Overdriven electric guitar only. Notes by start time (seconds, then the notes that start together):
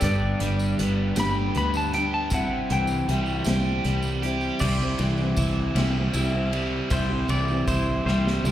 Already playing: G3 G4
0.02 G2
0.41 G3
0.79 B3
1.16 G4
1.56 B3
1.93 G4
2.31 C3
2.70 E3
3.08 G3
3.46 G4
3.85 G3
4.23 G4
4.61 C3
4.99 E3
5.37 E4
5.75 G3
6.14 E4
6.52 G3
6.90 C3
7.30 E3
7.68 E4
8.07 G3
8.45 E4